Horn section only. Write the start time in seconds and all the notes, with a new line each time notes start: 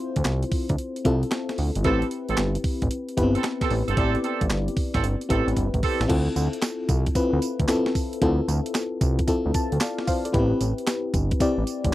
1.84 C4 G4 A4
2.29 C4 G4 A4
3.35 C4 G4 A4
3.61 C4 G4 A4
3.88 C4 G4 A4
3.97 C4 G4 A4
4.23 C4 G4 A4
4.94 C4 G4 A4
5.29 C4 G4 A4
5.83 C4 G4 A4